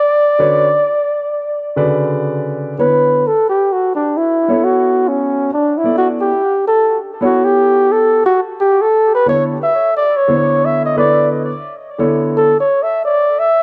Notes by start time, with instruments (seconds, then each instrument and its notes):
Already playing: flugelhorn D5
0.39 grand piano D3 C#4 F#4 B4 C#5
1.76 grand piano C#3 D3 F#4 B4 D5
2.78 grand piano D3 B3 E4 A4 C#5, flugelhorn B4
3.27 flugelhorn A4
3.49 flugelhorn G4
3.72 flugelhorn F#4
3.95 flugelhorn D4
4.17 flugelhorn E4
4.48 grand piano B3 E4 A4 C#5
4.64 flugelhorn F#4
5.08 flugelhorn C#4
5.53 flugelhorn D4
5.77 flugelhorn E4
5.84 grand piano B3 E4 A4 D5
5.98 flugelhorn F#4
6.21 flugelhorn G4
6.67 flugelhorn A4
7.21 grand piano B3 E4 A4 C#5, flugelhorn F#4
7.45 flugelhorn G4
7.92 flugelhorn A4
8.26 flugelhorn F#4
8.61 flugelhorn G4
8.82 flugelhorn A4
9.15 flugelhorn B4
9.26 grand piano D3 B3 E4 A4 C#5, flugelhorn C#5
9.63 flugelhorn E5
9.96 flugelhorn D5
10.16 flugelhorn C#5
10.28 grand piano D3 B3 E4 A4 C5
10.36 grand piano C#5
10.65 flugelhorn E5
10.85 flugelhorn D#5
10.96 grand piano D3 B3 E4 A4 B4, flugelhorn D5
11.98 grand piano D3 B3 E4 A4 C#5
12.37 flugelhorn A4
12.60 flugelhorn C#5
12.83 flugelhorn E5
13.05 flugelhorn D5
13.39 flugelhorn E5